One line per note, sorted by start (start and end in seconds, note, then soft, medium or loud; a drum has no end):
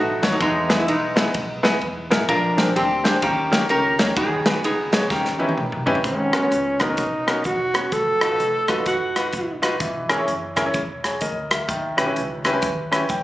0.00 0.19 A1 medium
0.00 0.19 B2 medium
0.00 0.38 A3 medium
0.00 0.31 D#4 medium
0.00 0.33 F#4 loud
0.22 0.38 D#2 medium
0.22 0.34 B3 medium
0.22 0.34 D#4 medium
0.22 0.34 F#4 medium
0.22 0.34 A4 medium
0.22 0.34 C#5 medium
0.22 snare loud
0.22 ride medium
0.32 0.40 D#4 medium
0.40 0.81 E2 loud
0.40 1.13 E3 medium
0.40 0.88 G#3 medium
0.40 0.88 B3 medium
0.40 0.79 D#4 loud
0.40 kick loud
0.40 ride medium
0.69 0.81 B3 medium
0.69 0.81 D#4 medium
0.69 0.81 E4 medium
0.69 0.81 G#4 medium
0.69 0.81 B4 medium
0.69 snare loud
0.69 ride medium
0.79 0.88 E4 medium
0.88 1.28 B1 medium
0.88 1.78 G#3 medium
0.88 1.78 B3 medium
0.88 1.82 D#4 medium
0.88 ride medium
1.16 1.27 B3 medium
1.16 1.27 D#4 medium
1.16 1.28 E4 medium
1.16 1.28 G#4 medium
1.16 1.28 B4 medium
1.16 snare loud
1.16 ride medium
1.34 1.75 B1 medium
1.34 kick loud
1.34 ride medium
1.63 1.75 B3 loud
1.63 1.75 D#4 medium
1.63 1.75 E4 medium
1.63 1.75 G#4 medium
1.63 1.75 B4 loud
1.63 snare loud
1.63 ride medium
1.81 2.07 E2 loud
1.81 ride medium
2.10 2.26 A1 medium
2.10 2.22 B3 medium
2.10 2.22 D#4 medium
2.10 2.22 E4 medium
2.10 2.22 G#4 medium
2.10 2.22 A#4 loud
2.10 snare loud
2.10 ride medium
2.28 2.68 A#1 loud
2.28 3.01 A#2 medium
2.28 2.75 D4 medium
2.28 3.19 F4 medium
2.28 2.76 A#4 loud
2.28 kick loud
2.28 ride medium
2.57 2.69 C4 medium
2.57 2.69 D4 medium
2.57 2.69 G4 medium
2.57 2.69 G#4 medium
2.57 2.69 A#4 medium
2.57 snare loud
2.57 ride medium
2.76 3.16 D2 medium
2.76 3.20 C4 medium
2.76 3.20 D4 medium
2.76 3.21 G4 loud
2.76 ride medium
3.04 3.15 C4 medium
3.04 3.15 D4 medium
3.04 3.15 G4 medium
3.04 3.16 G#4 medium
3.04 3.16 C5 medium
3.04 snare loud
3.04 ride medium
3.22 3.62 D#2 loud
3.22 3.94 D#3 medium
3.22 4.13 A#3 medium
3.22 3.69 C#4 medium
3.22 3.69 G4 loud
3.22 kick loud
3.22 ride medium
3.51 3.62 A#3 medium
3.51 3.62 C#4 medium
3.51 3.63 D#4 medium
3.51 3.63 G4 medium
3.51 3.63 A#4 medium
3.51 snare loud
3.51 ride medium
3.69 3.95 C#2 medium
3.69 4.14 C#4 medium
3.69 4.14 G4 medium
3.69 4.18 A#4 loud
3.69 ride medium
3.98 4.14 D2 medium
3.98 4.10 A#3 medium
3.98 4.10 C#4 medium
3.98 4.10 D#4 medium
3.98 4.10 G4 medium
3.98 4.10 C#5 medium
3.98 snare loud
3.98 ride medium
4.16 4.56 D#2 loud
4.16 4.89 D#3 medium
4.16 4.64 B3 medium
4.16 4.63 D#4 medium
4.16 4.64 G#4 loud
4.16 kick loud
4.16 ride medium
4.46 4.57 G#3 medium
4.46 4.57 B3 medium
4.46 4.57 D#4 medium
4.46 4.57 G#4 medium
4.46 4.57 B4 medium
4.46 snare loud
4.46 ride medium
4.64 5.03 C#2 medium
4.64 5.08 B3 medium
4.64 5.08 D#4 medium
4.64 5.11 G#4 loud
4.64 ride medium
4.92 5.04 G#3 medium
4.92 5.04 B3 medium
4.92 5.04 D#4 medium
4.92 5.04 G#4 medium
4.92 5.04 C#5 medium
4.92 snare loud
4.92 ride medium
5.10 5.50 D#2 loud
5.10 5.83 D#3 medium
5.10 6.00 A#3 medium
5.10 6.00 C#4 medium
5.10 5.83 G4 medium
5.10 kick loud
5.10 snare medium
5.25 snare medium
5.39 5.50 C#4 medium
5.39 5.50 D#4 medium
5.39 5.50 E4 medium
5.39 5.50 G4 medium
5.39 5.50 B4 medium
5.39 high tom medium
5.49 high tom medium
5.57 5.82 B1 medium
5.57 mid tom medium
5.72 mid tom medium
5.86 6.01 G1 medium
5.86 5.97 C#4 medium
5.86 5.97 D#4 medium
5.86 5.97 E4 medium
5.86 5.97 G4 medium
5.86 5.98 B4 loud
5.86 floor tom loud
5.95 floor tom loud
6.04 6.29 G#1 medium
6.04 6.77 G#2 medium
6.04 6.82 C#4 medium
6.04 kick loud
6.04 closed hi-hat medium
6.33 6.39 B3 medium
6.33 6.39 C#4 medium
6.33 6.39 F#4 medium
6.33 6.39 A#4 medium
6.33 cross-stick medium
6.33 closed hi-hat medium
6.42 6.55 B3 medium
6.42 6.55 C#4 medium
6.42 6.55 F#4 soft
6.42 6.55 C#5 medium
6.51 6.98 C#2 medium
6.51 closed hi-hat medium
6.80 6.86 B3 medium
6.80 6.86 C#4 medium
6.80 7.45 D#4 medium
6.80 6.86 F#4 medium
6.80 6.86 A#4 medium
6.80 kick medium
6.80 cross-stick medium
6.80 closed hi-hat medium
6.89 7.02 B3 medium
6.89 7.02 C#4 soft
6.89 7.02 F#4 medium
6.89 7.02 A#4 medium
6.97 7.38 B1 medium
6.97 kick medium
6.97 closed hi-hat medium
7.27 7.38 B3 medium
7.27 7.38 C#4 medium
7.27 7.39 F#4 medium
7.27 7.39 A#4 medium
7.27 cross-stick loud
7.27 closed hi-hat medium
7.44 7.85 E1 medium
7.44 7.94 F#4 medium
7.44 kick medium
7.44 closed hi-hat medium
7.74 7.85 B3 medium
7.74 7.85 C#4 medium
7.74 7.86 F#4 medium
7.74 7.86 C#5 medium
7.74 cross-stick loud
7.74 closed hi-hat medium
7.92 8.17 F1 medium
7.92 8.87 A4 loud
7.92 kick loud
7.92 closed hi-hat medium
8.21 8.37 A1 medium
8.21 8.27 D#4 medium
8.21 8.27 F4 medium
8.21 8.27 F#4 medium
8.21 8.27 A4 medium
8.21 cross-stick loud
8.21 closed hi-hat medium
8.30 8.43 D#4 medium
8.30 8.43 F4 medium
8.30 8.43 F#4 medium
8.30 8.43 B4 medium
8.40 8.80 F1 medium
8.40 closed hi-hat medium
8.68 8.74 D#4 medium
8.68 8.74 F4 medium
8.68 8.74 F#4 medium
8.68 8.74 B4 medium
8.68 kick medium
8.68 cross-stick loud
8.68 closed hi-hat medium
8.78 8.90 D#4 medium
8.78 8.90 F4 medium
8.78 8.90 F#4 soft
8.78 8.90 B4 medium
8.86 9.26 F#1 medium
8.86 9.60 F#4 medium
8.86 kick loud
8.86 closed hi-hat medium
9.16 9.27 D#4 medium
9.16 9.27 F4 medium
9.16 9.27 F#4 medium
9.16 9.27 B4 medium
9.16 cross-stick medium
9.16 closed hi-hat medium
9.33 9.73 D#1 medium
9.33 kick medium
9.33 closed hi-hat medium
9.62 9.73 D#4 medium
9.62 9.73 F4 medium
9.62 9.74 F#4 medium
9.62 9.74 B4 medium
9.62 cross-stick medium
9.62 closed hi-hat medium
9.80 10.06 E1 medium
9.80 10.53 E3 medium
9.80 kick loud
9.80 closed hi-hat medium
10.09 10.25 G#1 medium
10.09 10.15 C#4 medium
10.09 10.15 E4 medium
10.09 10.15 G#4 medium
10.09 10.15 A#4 medium
10.09 cross-stick medium
10.09 closed hi-hat medium
10.18 10.31 C#4 medium
10.18 10.31 E4 medium
10.18 10.31 G#4 medium
10.18 10.31 C#5 medium
10.27 10.67 F#1 medium
10.27 closed hi-hat medium
10.56 10.62 C#4 medium
10.56 10.62 E4 medium
10.56 10.62 G#4 medium
10.56 10.63 A#4 medium
10.56 kick medium
10.56 cross-stick medium
10.56 closed hi-hat medium
10.66 10.78 C#4 medium
10.66 10.78 E4 medium
10.66 10.78 G#4 medium
10.66 10.78 C#5 medium
10.74 11.15 E1 medium
10.74 kick medium
10.74 closed hi-hat medium
11.04 11.21 G#4 medium
11.04 11.21 C#5 medium
11.04 cross-stick medium
11.04 closed hi-hat medium
11.21 11.62 D2 medium
11.21 11.50 A#4 medium
11.21 11.50 D#5 medium
11.21 kick medium
11.21 closed hi-hat medium
11.51 11.96 A#4 soft
11.51 11.96 E5 medium
11.51 cross-stick loud
11.51 closed hi-hat medium
11.68 11.94 D#2 medium
11.68 12.41 D#3 medium
11.68 kick medium
11.68 closed hi-hat medium
11.97 12.13 B1 medium
11.97 12.03 C#4 medium
11.97 12.03 E4 medium
11.97 12.04 G4 medium
11.97 12.04 B4 medium
11.97 cross-stick loud
11.97 closed hi-hat medium
12.06 12.19 C#4 medium
12.06 12.19 E4 medium
12.06 12.19 G4 medium
12.06 12.19 B4 medium
12.16 12.56 C#2 medium
12.16 closed hi-hat medium
12.45 12.51 C#4 medium
12.45 12.51 E4 medium
12.45 12.51 G4 medium
12.45 12.51 B4 medium
12.45 cross-stick medium
12.45 closed hi-hat medium
12.53 12.66 C#4 medium
12.53 12.66 E4 medium
12.53 12.66 G4 medium
12.53 12.66 B4 medium
12.62 13.03 D#2 medium
12.62 kick medium
12.62 closed hi-hat medium
12.91 13.03 C#4 medium
12.91 13.03 E4 medium
12.91 13.03 G4 medium
12.91 13.03 B4 medium
12.91 cross-stick medium
12.91 closed hi-hat medium
13.09 13.23 E2 medium
13.09 13.23 C#5 soft
13.09 13.23 G5 medium
13.09 kick medium
13.09 closed hi-hat medium